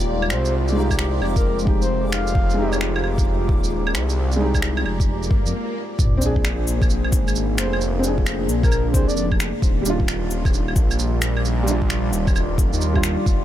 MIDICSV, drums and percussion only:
0, 0, Header, 1, 2, 480
1, 0, Start_track
1, 0, Tempo, 454545
1, 564, Time_signature, 4, 2, 24, 8
1, 14199, End_track
2, 0, Start_track
2, 0, Title_t, "Drums"
2, 236, Note_on_c, 9, 75, 60
2, 319, Note_on_c, 9, 26, 103
2, 319, Note_on_c, 9, 82, 43
2, 342, Note_off_c, 9, 75, 0
2, 425, Note_off_c, 9, 26, 0
2, 425, Note_off_c, 9, 82, 0
2, 477, Note_on_c, 9, 82, 51
2, 582, Note_off_c, 9, 82, 0
2, 718, Note_on_c, 9, 82, 28
2, 823, Note_off_c, 9, 82, 0
2, 957, Note_on_c, 9, 36, 58
2, 959, Note_on_c, 9, 75, 45
2, 959, Note_on_c, 9, 82, 47
2, 1042, Note_on_c, 9, 26, 100
2, 1063, Note_off_c, 9, 36, 0
2, 1065, Note_off_c, 9, 75, 0
2, 1065, Note_off_c, 9, 82, 0
2, 1148, Note_off_c, 9, 26, 0
2, 1286, Note_on_c, 9, 75, 35
2, 1391, Note_off_c, 9, 75, 0
2, 1438, Note_on_c, 9, 36, 97
2, 1439, Note_on_c, 9, 82, 48
2, 1543, Note_off_c, 9, 36, 0
2, 1545, Note_off_c, 9, 82, 0
2, 1680, Note_on_c, 9, 82, 29
2, 1763, Note_on_c, 9, 36, 104
2, 1785, Note_off_c, 9, 82, 0
2, 1868, Note_off_c, 9, 36, 0
2, 1921, Note_on_c, 9, 82, 47
2, 2026, Note_off_c, 9, 82, 0
2, 2244, Note_on_c, 9, 26, 100
2, 2244, Note_on_c, 9, 82, 43
2, 2349, Note_off_c, 9, 26, 0
2, 2349, Note_off_c, 9, 82, 0
2, 2398, Note_on_c, 9, 82, 50
2, 2483, Note_on_c, 9, 36, 110
2, 2504, Note_off_c, 9, 82, 0
2, 2589, Note_off_c, 9, 36, 0
2, 2638, Note_on_c, 9, 82, 30
2, 2744, Note_off_c, 9, 82, 0
2, 2879, Note_on_c, 9, 75, 47
2, 2879, Note_on_c, 9, 82, 50
2, 2967, Note_on_c, 9, 26, 96
2, 2984, Note_off_c, 9, 75, 0
2, 2984, Note_off_c, 9, 82, 0
2, 3072, Note_off_c, 9, 26, 0
2, 3124, Note_on_c, 9, 75, 61
2, 3207, Note_off_c, 9, 75, 0
2, 3207, Note_on_c, 9, 75, 36
2, 3313, Note_off_c, 9, 75, 0
2, 3359, Note_on_c, 9, 36, 98
2, 3366, Note_on_c, 9, 82, 53
2, 3464, Note_off_c, 9, 36, 0
2, 3471, Note_off_c, 9, 82, 0
2, 3685, Note_on_c, 9, 36, 100
2, 3790, Note_off_c, 9, 36, 0
2, 3842, Note_on_c, 9, 82, 50
2, 3948, Note_off_c, 9, 82, 0
2, 4085, Note_on_c, 9, 75, 62
2, 4169, Note_on_c, 9, 26, 102
2, 4169, Note_on_c, 9, 82, 44
2, 4190, Note_off_c, 9, 75, 0
2, 4274, Note_off_c, 9, 26, 0
2, 4274, Note_off_c, 9, 82, 0
2, 4323, Note_on_c, 9, 82, 54
2, 4429, Note_off_c, 9, 82, 0
2, 4559, Note_on_c, 9, 82, 33
2, 4665, Note_off_c, 9, 82, 0
2, 4799, Note_on_c, 9, 36, 59
2, 4801, Note_on_c, 9, 75, 49
2, 4801, Note_on_c, 9, 82, 51
2, 4883, Note_on_c, 9, 26, 103
2, 4905, Note_off_c, 9, 36, 0
2, 4906, Note_off_c, 9, 75, 0
2, 4906, Note_off_c, 9, 82, 0
2, 4989, Note_off_c, 9, 26, 0
2, 5039, Note_on_c, 9, 75, 64
2, 5129, Note_off_c, 9, 75, 0
2, 5129, Note_on_c, 9, 75, 39
2, 5234, Note_off_c, 9, 75, 0
2, 5279, Note_on_c, 9, 36, 96
2, 5287, Note_on_c, 9, 82, 53
2, 5385, Note_off_c, 9, 36, 0
2, 5392, Note_off_c, 9, 82, 0
2, 5521, Note_on_c, 9, 82, 32
2, 5604, Note_on_c, 9, 36, 104
2, 5627, Note_off_c, 9, 82, 0
2, 5709, Note_off_c, 9, 36, 0
2, 5767, Note_on_c, 9, 82, 54
2, 5872, Note_off_c, 9, 82, 0
2, 6324, Note_on_c, 9, 36, 115
2, 6329, Note_on_c, 9, 82, 58
2, 6429, Note_off_c, 9, 36, 0
2, 6435, Note_off_c, 9, 82, 0
2, 6566, Note_on_c, 9, 69, 72
2, 6566, Note_on_c, 9, 82, 58
2, 6672, Note_off_c, 9, 69, 0
2, 6672, Note_off_c, 9, 82, 0
2, 6718, Note_on_c, 9, 36, 62
2, 6808, Note_on_c, 9, 26, 105
2, 6808, Note_on_c, 9, 82, 59
2, 6823, Note_off_c, 9, 36, 0
2, 6913, Note_off_c, 9, 26, 0
2, 6913, Note_off_c, 9, 82, 0
2, 7048, Note_on_c, 9, 69, 70
2, 7154, Note_off_c, 9, 69, 0
2, 7198, Note_on_c, 9, 36, 107
2, 7205, Note_on_c, 9, 75, 36
2, 7205, Note_on_c, 9, 82, 31
2, 7286, Note_off_c, 9, 82, 0
2, 7286, Note_on_c, 9, 82, 57
2, 7304, Note_off_c, 9, 36, 0
2, 7311, Note_off_c, 9, 75, 0
2, 7392, Note_off_c, 9, 82, 0
2, 7440, Note_on_c, 9, 75, 38
2, 7523, Note_on_c, 9, 36, 112
2, 7525, Note_on_c, 9, 69, 73
2, 7545, Note_off_c, 9, 75, 0
2, 7628, Note_off_c, 9, 36, 0
2, 7630, Note_off_c, 9, 69, 0
2, 7686, Note_on_c, 9, 75, 37
2, 7686, Note_on_c, 9, 82, 53
2, 7767, Note_off_c, 9, 82, 0
2, 7767, Note_on_c, 9, 82, 59
2, 7791, Note_off_c, 9, 75, 0
2, 7873, Note_off_c, 9, 82, 0
2, 8007, Note_on_c, 9, 26, 111
2, 8007, Note_on_c, 9, 69, 76
2, 8112, Note_off_c, 9, 26, 0
2, 8112, Note_off_c, 9, 69, 0
2, 8166, Note_on_c, 9, 75, 55
2, 8248, Note_on_c, 9, 82, 57
2, 8271, Note_off_c, 9, 75, 0
2, 8354, Note_off_c, 9, 82, 0
2, 8487, Note_on_c, 9, 69, 70
2, 8487, Note_on_c, 9, 82, 58
2, 8592, Note_off_c, 9, 69, 0
2, 8592, Note_off_c, 9, 82, 0
2, 8638, Note_on_c, 9, 36, 65
2, 8728, Note_on_c, 9, 26, 109
2, 8728, Note_on_c, 9, 82, 58
2, 8743, Note_off_c, 9, 36, 0
2, 8833, Note_off_c, 9, 26, 0
2, 8833, Note_off_c, 9, 82, 0
2, 8966, Note_on_c, 9, 69, 69
2, 9072, Note_off_c, 9, 69, 0
2, 9118, Note_on_c, 9, 36, 113
2, 9124, Note_on_c, 9, 75, 36
2, 9124, Note_on_c, 9, 82, 30
2, 9206, Note_off_c, 9, 75, 0
2, 9206, Note_off_c, 9, 82, 0
2, 9206, Note_on_c, 9, 75, 52
2, 9206, Note_on_c, 9, 82, 57
2, 9223, Note_off_c, 9, 36, 0
2, 9312, Note_off_c, 9, 75, 0
2, 9312, Note_off_c, 9, 82, 0
2, 9442, Note_on_c, 9, 36, 115
2, 9445, Note_on_c, 9, 69, 69
2, 9548, Note_off_c, 9, 36, 0
2, 9550, Note_off_c, 9, 69, 0
2, 9600, Note_on_c, 9, 82, 54
2, 9681, Note_off_c, 9, 82, 0
2, 9681, Note_on_c, 9, 82, 58
2, 9787, Note_off_c, 9, 82, 0
2, 9837, Note_on_c, 9, 36, 60
2, 9838, Note_on_c, 9, 75, 36
2, 9928, Note_on_c, 9, 26, 114
2, 9928, Note_on_c, 9, 69, 74
2, 9942, Note_off_c, 9, 36, 0
2, 9944, Note_off_c, 9, 75, 0
2, 10033, Note_off_c, 9, 26, 0
2, 10033, Note_off_c, 9, 69, 0
2, 10162, Note_on_c, 9, 36, 124
2, 10168, Note_on_c, 9, 82, 55
2, 10268, Note_off_c, 9, 36, 0
2, 10273, Note_off_c, 9, 82, 0
2, 10407, Note_on_c, 9, 69, 70
2, 10407, Note_on_c, 9, 82, 56
2, 10512, Note_off_c, 9, 69, 0
2, 10512, Note_off_c, 9, 82, 0
2, 10557, Note_on_c, 9, 36, 66
2, 10647, Note_on_c, 9, 26, 117
2, 10647, Note_on_c, 9, 82, 59
2, 10663, Note_off_c, 9, 36, 0
2, 10752, Note_off_c, 9, 26, 0
2, 10752, Note_off_c, 9, 82, 0
2, 10884, Note_on_c, 9, 69, 66
2, 10990, Note_off_c, 9, 69, 0
2, 11037, Note_on_c, 9, 36, 111
2, 11044, Note_on_c, 9, 75, 34
2, 11044, Note_on_c, 9, 82, 29
2, 11127, Note_off_c, 9, 82, 0
2, 11127, Note_on_c, 9, 82, 56
2, 11143, Note_off_c, 9, 36, 0
2, 11149, Note_off_c, 9, 75, 0
2, 11232, Note_off_c, 9, 82, 0
2, 11281, Note_on_c, 9, 75, 36
2, 11363, Note_on_c, 9, 36, 112
2, 11364, Note_on_c, 9, 69, 66
2, 11387, Note_off_c, 9, 75, 0
2, 11468, Note_off_c, 9, 36, 0
2, 11470, Note_off_c, 9, 69, 0
2, 11520, Note_on_c, 9, 75, 34
2, 11520, Note_on_c, 9, 82, 55
2, 11608, Note_off_c, 9, 82, 0
2, 11608, Note_on_c, 9, 82, 60
2, 11625, Note_off_c, 9, 75, 0
2, 11713, Note_off_c, 9, 82, 0
2, 11846, Note_on_c, 9, 26, 118
2, 11846, Note_on_c, 9, 69, 71
2, 11951, Note_off_c, 9, 26, 0
2, 11951, Note_off_c, 9, 69, 0
2, 12004, Note_on_c, 9, 75, 51
2, 12092, Note_on_c, 9, 82, 55
2, 12109, Note_off_c, 9, 75, 0
2, 12197, Note_off_c, 9, 82, 0
2, 12331, Note_on_c, 9, 69, 72
2, 12331, Note_on_c, 9, 82, 57
2, 12436, Note_off_c, 9, 69, 0
2, 12436, Note_off_c, 9, 82, 0
2, 12479, Note_on_c, 9, 36, 65
2, 12567, Note_on_c, 9, 26, 109
2, 12567, Note_on_c, 9, 82, 53
2, 12585, Note_off_c, 9, 36, 0
2, 12673, Note_off_c, 9, 26, 0
2, 12673, Note_off_c, 9, 82, 0
2, 12810, Note_on_c, 9, 69, 72
2, 12916, Note_off_c, 9, 69, 0
2, 12959, Note_on_c, 9, 36, 109
2, 12963, Note_on_c, 9, 75, 34
2, 12963, Note_on_c, 9, 82, 30
2, 13050, Note_off_c, 9, 75, 0
2, 13050, Note_off_c, 9, 82, 0
2, 13050, Note_on_c, 9, 75, 49
2, 13050, Note_on_c, 9, 82, 53
2, 13065, Note_off_c, 9, 36, 0
2, 13155, Note_off_c, 9, 75, 0
2, 13155, Note_off_c, 9, 82, 0
2, 13285, Note_on_c, 9, 36, 112
2, 13293, Note_on_c, 9, 69, 69
2, 13390, Note_off_c, 9, 36, 0
2, 13398, Note_off_c, 9, 69, 0
2, 13444, Note_on_c, 9, 82, 52
2, 13529, Note_off_c, 9, 82, 0
2, 13529, Note_on_c, 9, 82, 57
2, 13635, Note_off_c, 9, 82, 0
2, 13681, Note_on_c, 9, 36, 59
2, 13682, Note_on_c, 9, 75, 33
2, 13765, Note_on_c, 9, 26, 111
2, 13765, Note_on_c, 9, 69, 74
2, 13786, Note_off_c, 9, 36, 0
2, 13788, Note_off_c, 9, 75, 0
2, 13870, Note_off_c, 9, 26, 0
2, 13870, Note_off_c, 9, 69, 0
2, 14006, Note_on_c, 9, 36, 115
2, 14010, Note_on_c, 9, 82, 53
2, 14111, Note_off_c, 9, 36, 0
2, 14115, Note_off_c, 9, 82, 0
2, 14199, End_track
0, 0, End_of_file